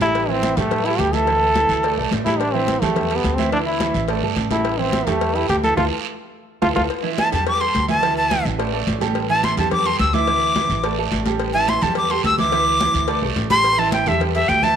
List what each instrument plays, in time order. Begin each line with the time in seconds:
Already playing: upright bass A1
0.01 grand piano G3 G4 A4, trombone E4, cowbell, high conga, short guiro
0.15 cowbell, high conga, long guiro
0.29 grand piano E3 E4 E5, trombone C4, high conga
0.43 cowbell, high conga, short guiro
0.57 upright bass A2, grand piano G3 G4 A4, trombone A3, cowbell, high conga, low conga, short guiro
0.71 cowbell, high conga, low conga, long guiro
0.85 grand piano G3 G4 A4, trombone E4, cowbell, high conga
0.99 upright bass D2, trombone G4, cowbell, high conga, short guiro
1.13 grand piano E3 E4 E5, trombone A4, high conga, short guiro
1.27 grand piano E3 E4 E5, cowbell, high conga, long guiro
1.42 high conga
1.55 grand piano E3 E4 E5, cowbell, high conga, short guiro
1.69 upright bass D2, high conga, short guiro
1.83 grand piano A3 A4 D5, cowbell, high conga, long guiro
1.98 upright bass B1, grand piano A3 A4 D5, high conga
2.11 upright bass A1, cowbell, high conga, short guiro
2.25 grand piano G3 G4 A4, trombone E4, cowbell, high conga, short guiro
2.39 trombone D4, cowbell, high conga, long guiro
2.53 grand piano E3 E4 E5, trombone C4, high conga
2.68 cowbell, high conga, short guiro
2.82 upright bass E2, grand piano G3 G4 A4, trombone A3, cowbell, high conga, low conga, short guiro
2.96 cowbell, high conga, low conga, long guiro
3.10 grand piano G3 G4 A4, cowbell, high conga
3.16 trombone B3
3.24 upright bass D2, cowbell, high conga, short guiro
3.35 grand piano E3 E4 E5, trombone C4, high conga, short guiro
3.52 grand piano E3 E4 E5, trombone D4, cowbell, high conga, long guiro
3.66 trombone E4, high conga
3.80 grand piano E3 E4 E5, cowbell, high conga, short guiro
3.94 upright bass A1, high conga, short guiro
4.08 grand piano A3 A4 D5, cowbell, high conga, long guiro
4.23 upright bass G1, grand piano A3 A4 D5, high conga
4.36 upright bass A1, cowbell, high conga, short guiro
4.50 grand piano G3 G4 A4, trombone E4, cowbell, high conga, short guiro
4.64 cowbell, high conga, long guiro
4.78 grand piano E3 E4 E5, trombone C4, high conga
4.93 cowbell, high conga, short guiro
5.07 upright bass E2, grand piano G3 G4 A4, trombone A3, cowbell, high conga, low conga, short guiro
5.21 cowbell, high conga, long guiro
5.35 grand piano G3 G4 A4, trombone E4, cowbell, high conga
5.49 upright bass D2, trombone G4, cowbell, high conga, short guiro
5.63 grand piano E3 E4 E5, trombone A4, high conga, short guiro
5.77 upright bass D2, grand piano E4 F4 A4, trombone F4, cowbell, high conga, long guiro
6.62 upright bass D2, grand piano E4 F4 A4, trombone F4, cowbell, high conga, long guiro
6.75 upright bass D2, grand piano E4 F4 A4, trombone F4, cowbell, high conga, long guiro
6.90 cowbell, high conga, long guiro
7.03 grand piano E3 E4 E5, high conga
7.18 flute A5, cowbell, high conga, short guiro
7.31 upright bass E2, grand piano G3 G4 A4, flute A5, cowbell, high conga, low conga, short guiro
7.47 flute D6, cowbell, high conga, long guiro
7.60 grand piano G3 G4 A4, flute C6, cowbell, high conga
7.74 upright bass D2, cowbell, high conga, short guiro
7.88 grand piano E3 E4 E5, flute A5, high conga, short guiro
8.02 grand piano E3 E4 E5, cowbell, high conga, long guiro
8.17 flute A5, high conga
8.30 grand piano E3 E4 E5, cowbell, high conga, short guiro
8.45 upright bass A1, high conga, short guiro
8.58 grand piano A3 A4 D5, cowbell, high conga, long guiro
8.72 grand piano A3 A4 D5, high conga
8.87 upright bass A1, cowbell, high conga, short guiro
9.01 grand piano G3 G4 A4, cowbell, high conga, short guiro
9.15 cowbell, high conga, long guiro
9.29 grand piano E3 E4 E5, flute A5, high conga
9.44 flute C6, cowbell, high conga, short guiro
9.57 upright bass E2, grand piano G3 G4 A4, flute A5, cowbell, high conga, low conga, short guiro
9.71 flute D6, cowbell, high conga, low conga, long guiro
9.85 grand piano G3 G4 A4, flute C6, cowbell, high conga
9.99 upright bass D2, flute E6, cowbell, high conga, short guiro
10.13 grand piano E3 E4 E5, flute D6, high conga, short guiro
10.27 grand piano E3 E4 E5, cowbell, high conga, long guiro
10.42 high conga
10.55 grand piano E3 E4 E5, cowbell, high conga, short guiro
10.69 upright bass A1, high conga, short guiro
10.83 grand piano A3 A4 D5, cowbell, high conga, long guiro
10.98 grand piano A3 A4 D5, high conga
11.12 upright bass A1, cowbell, high conga, short guiro
11.26 grand piano G3 G4 A4, cowbell, high conga, short guiro
11.39 cowbell, high conga, long guiro
11.53 grand piano E3 E4 E5, flute A5, high conga
11.68 flute C6, cowbell, high conga, short guiro
11.81 upright bass E2, grand piano G3 G4 A4, flute A5, cowbell, high conga, low conga, short guiro
11.95 flute D6, cowbell, high conga, long guiro
12.10 grand piano G3 G4 A4, flute C6, cowbell, high conga
12.24 upright bass D2, flute E6, cowbell, high conga, short guiro
12.38 grand piano E3 E4 E5, flute D6, high conga, short guiro
12.52 grand piano E3 E4 E5, cowbell, high conga, long guiro
12.67 high conga
12.80 grand piano E3 E4 E5, cowbell, high conga, short guiro
12.94 upright bass D2, short guiro
13.08 grand piano A3 A4 D5, cowbell, high conga, long guiro
13.22 upright bass B1, grand piano A3 A4 D5, high conga
13.36 upright bass A1, cowbell, high conga, short guiro
13.50 grand piano G3 G4 A4, flute C6, cowbell, high conga, short guiro
13.64 cowbell, high conga, long guiro
13.78 grand piano E3 E4 E5, flute A5, high conga
13.92 flute G5, cowbell, high conga, short guiro
14.06 upright bass E2, grand piano G3 G4 A4, flute E5, cowbell, high conga, low conga, short guiro
14.20 cowbell, high conga, low conga, long guiro
14.35 grand piano G3 G4 A4, flute E5, cowbell, high conga
14.49 upright bass D2, flute G5, cowbell, high conga, short guiro
14.63 grand piano E3 E4 E5, flute A5, high conga, short guiro